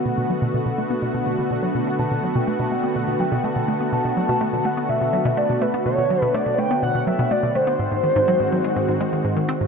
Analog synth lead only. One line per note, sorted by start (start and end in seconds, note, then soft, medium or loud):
1.99 2.37 A5 loud
2.35 2.49 G5 loud
2.47 2.73 A5 loud
2.71 2.95 G5 loud
2.96 3.18 F#5 loud
3.20 3.46 G5 loud
3.45 3.92 A5 loud
3.93 4.67 A5 loud
4.65 4.91 F#5 loud
4.89 5.39 E5 loud
5.38 5.63 D5 loud
5.62 5.85 B4 medium
5.86 6.23 C#5 loud
6.23 6.36 B4 loud
6.35 6.60 D5 loud
6.59 6.83 G5 loud
6.83 7.09 F#5 loud
7.07 7.33 E5 medium
7.32 7.57 D5 medium
7.56 9.25 C5 loud